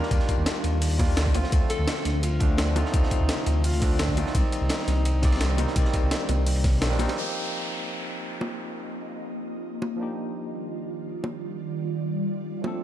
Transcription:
Already playing: D#3 G3 A#3 D4 F4 G4 A#4
0.03 snare
0.08 D#2 D#3 G3 A#3, kick, closed hi-hat, ride
0.13 D4 F4
0.19 snare
0.28 kick, closed hi-hat, ride
0.38 D#2
0.46 snare, closed hi-hat, ride
0.64 D#2, closed hi-hat, ride
0.81 closed hi-hat, open hi-hat
0.91 D#2, ride
0.98 D#3 G3 A#3 D4 F4, kick, closed hi-hat, ride, high bongo
1.17 D2, snare, closed hi-hat, ride
1.26 kick
1.33 D3 F3 A3 C4 F4, closed hi-hat, ride, high bongo
1.44 snare
1.50 D2 D3 F3 A3, kick, closed hi-hat, ride
1.54 C4 D4
1.70 A4, closed hi-hat, ride
1.79 D2
1.88 snare, closed hi-hat, ride
1.97 snare
2.05 D2, snare, closed hi-hat, ride
2.23 F4, closed hi-hat, ride
2.32 D2
2.39 D3 F3 A3 C4 D4, kick, closed hi-hat, ride
2.58 D2 D4, snare, closed hi-hat, ride
2.75 D3 F3 A3 C4 D#4 F4, closed hi-hat, ride, high bongo
2.85 snare
2.91 D2 C3 F3 A3, kick, closed hi-hat, ride
2.95 C4 D5
3.03 snare
3.11 kick, closed hi-hat, ride
3.21 D2
3.29 snare, closed hi-hat, ride
3.46 D2, closed hi-hat, ride
3.64 F4, closed hi-hat, open hi-hat
3.73 D2, ride
3.80 D3 F3 A3 C4 D4, kick, closed hi-hat, ride
3.99 D2 D4, snare, closed hi-hat, ride
4.09 kick
4.16 D3 F3 A3 C4 D#4 F4, closed hi-hat, ride, high bongo
4.27 snare
4.32 C2 D#3 G3 A#3, kick, closed hi-hat, ride
4.36 C4 D5
4.52 closed hi-hat, ride
4.62 C2
4.69 snare, closed hi-hat, ride
4.79 snare
4.88 C2, snare, closed hi-hat, ride
5.05 closed hi-hat, ride
5.15 C2
5.22 D#3 G3 A#3 C4 D5, kick, snare, closed hi-hat, ride
5.32 snare, ride
5.36 snare, ride
5.41 C2, snare, closed hi-hat, ride
5.57 D#3 G3 A#3 C4 D#4, closed hi-hat, ride, high bongo
5.68 snare
5.73 C2 D#3 G3 A#3, kick, closed hi-hat, ride
5.77 C4 D5
5.85 snare
5.94 kick, closed hi-hat, ride
6.03 C2
6.11 snare, closed hi-hat, ride
6.29 C2, closed hi-hat, ride, high bongo
6.47 closed hi-hat, open hi-hat
6.56 C2, ride
6.64 kick, snare, closed hi-hat, ride
6.80 A#1 D#3 G3 A#3 C4 D4, snare, closed hi-hat, ride
6.90 D#3 G3 A#3 C4 D4, snare
6.98 D#3 G3 A#3 C4 D#4, snare, closed hi-hat, ride, high bongo
7.08 snare, ride
7.14 F3 A#3 C4 F4 D#5, downlifter
7.19 D#4 G4
8.41 high bongo
9.82 high bongo
9.97 D#3 F3 G3 A#3 D4 F4 D5
10.01 D#4 G4
11.24 high bongo
12.61 F3 A3 C4, high bongo
12.66 D4 A4

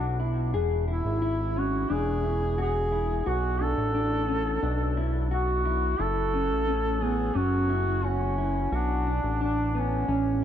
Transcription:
Already playing: B1 D4 F#4
0.20 E4
0.54 E1 G#4
0.88 E4
1.05 G#1
1.22 E4
1.56 C#4 F#4
1.90 E1 D4 G#4
2.24 E4
2.58 F#4 G#4
2.92 E4
3.21 G#4
3.26 B1 F#4
3.61 D4 A4
3.78 A1
3.94 D4
4.28 C#4
4.63 B1 D4
4.97 E4
5.31 F#4
5.65 E4
5.99 F#1 E4 A4
6.33 C#4
6.50 A1
6.68 C#4
7.02 B3 G#4
7.35 F#1 C#4 F#4
7.70 E4
8.04 C#4 F#4
8.38 E4
8.72 B1 D4 F#4
9.07 D4
9.24 A1
9.41 D4
9.75 B3 C#4
10.08 A1 C#4

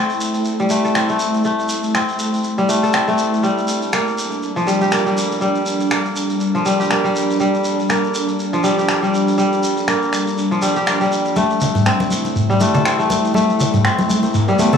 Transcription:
Already playing: G3 A3 C4 E4 A4
0.09 shekere
0.20 shekere
0.34 shekere
0.45 shekere
0.59 G3, shekere
0.70 A3, shekere
0.84 A4, shekere
0.95 C4, finger snap, shekere
1.09 A3, shekere
1.19 shekere
1.34 shekere
1.44 A3, shekere
1.59 shekere
1.69 shekere
1.83 shekere
1.95 C4, finger snap, shekere
2.08 shekere
2.19 shekere
2.33 shekere
2.44 shekere
2.58 G3, shekere
2.69 A3, shekere
2.83 A4, shekere
2.93 C4, finger snap, shekere
3.08 A3, shekere
3.18 shekere
3.33 shekere
3.43 G3 D4, shekere
3.58 shekere
3.68 shekere
3.82 shekere
3.93 A#3, finger snap, shekere
4.07 shekere
4.18 shekere
4.31 shekere
4.42 shekere
4.56 F3, shekere
4.67 G3, shekere
4.81 G4, shekere
4.92 A#3, finger snap, shekere
5.06 G3, shekere
5.18 shekere
5.31 shekere
5.41 G3, shekere
5.55 shekere
5.66 shekere
5.80 shekere
5.91 A#3, finger snap, shekere
6.06 shekere
6.16 shekere
6.30 shekere
6.40 shekere
6.55 F3, shekere
6.66 G3, shekere
6.80 G4, shekere
6.90 A#3, finger snap, shekere
7.04 G3, shekere
7.16 shekere
7.30 shekere
7.40 G3, shekere
7.54 shekere
7.64 shekere
7.79 shekere
7.89 A#3, finger snap, shekere
8.04 shekere
8.15 shekere
8.28 shekere
8.39 shekere
8.53 F3, shekere
8.64 G3, shekere
8.78 G4, shekere
8.88 A#3, finger snap, shekere
9.02 G3, shekere
9.14 shekere
9.28 shekere
9.38 G3, shekere
9.53 shekere
9.63 shekere
9.77 shekere
9.88 A#3, finger snap, shekere
10.02 shekere
10.13 finger snap, shekere
10.27 shekere
10.38 shekere
10.51 F3, shekere
10.62 G3, shekere
10.76 G4, shekere
10.87 A#3, finger snap, shekere
11.01 G3, shekere
11.12 shekere
11.25 shekere
11.36 A3 E4 A4, riser, muted conga, high conga, shekere
11.50 shekere
11.61 low conga, shekere
11.75 mid tom, muted conga, shekere
11.86 C4, finger snap, shekere
12.00 muted conga, high conga, shekere
12.11 high conga, shekere
12.25 muted conga, shekere
12.36 mid tom, shekere
12.50 G3, mid tom, shekere
12.60 A3, muted conga, shekere
12.74 A4, low conga, shekere
12.85 C4, finger snap, muted conga, shekere
12.99 A3, shekere
13.10 muted conga, high conga, shekere
13.24 shekere
13.34 A3, muted conga, high conga, shekere
13.49 shekere
13.60 low conga, shekere
13.74 mid tom, muted conga, shekere
13.85 C4, finger snap, shekere
13.98 muted conga, high conga, shekere
14.10 high conga, shekere
14.23 muted conga, shekere
14.34 mid tom, shekere
14.48 G3, shekere
14.59 A3, muted conga, high conga, shekere
14.73 A4, low conga, shekere

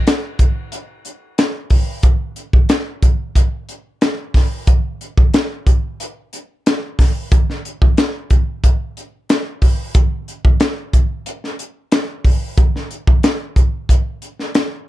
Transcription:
0.07 snare, closed hi-hat
0.39 kick, closed hi-hat
0.72 closed hi-hat
1.05 closed hi-hat
1.38 snare, closed hi-hat
1.70 kick, open hi-hat
2.03 kick, closed hi-hat
2.36 closed hi-hat
2.53 kick
2.69 snare, closed hi-hat
3.02 kick, closed hi-hat
3.35 kick, closed hi-hat
3.69 closed hi-hat
4.01 snare, closed hi-hat
4.34 kick, snare, open hi-hat
4.67 kick, closed hi-hat
5.01 closed hi-hat
5.18 kick
5.34 snare, closed hi-hat
5.67 kick, closed hi-hat
6.00 closed hi-hat
6.33 closed hi-hat
6.66 snare, closed hi-hat
6.99 kick, snare, open hi-hat
7.32 kick, closed hi-hat
7.50 snare
7.65 closed hi-hat
7.82 kick
7.97 snare, closed hi-hat
8.30 kick, closed hi-hat
8.64 kick, closed hi-hat
8.97 closed hi-hat
9.29 snare, closed hi-hat
9.62 kick, open hi-hat
9.94 kick, closed hi-hat
10.28 closed hi-hat
10.45 kick
10.60 snare, closed hi-hat
10.93 kick, closed hi-hat
11.26 closed hi-hat
11.44 snare
11.59 closed hi-hat
11.92 snare, closed hi-hat
12.25 kick, open hi-hat
12.57 kick, closed hi-hat
12.76 snare
12.91 closed hi-hat
13.07 kick
13.23 snare, closed hi-hat
13.56 kick, closed hi-hat
13.89 kick, closed hi-hat
14.22 closed hi-hat
14.39 snare
14.55 snare, closed hi-hat

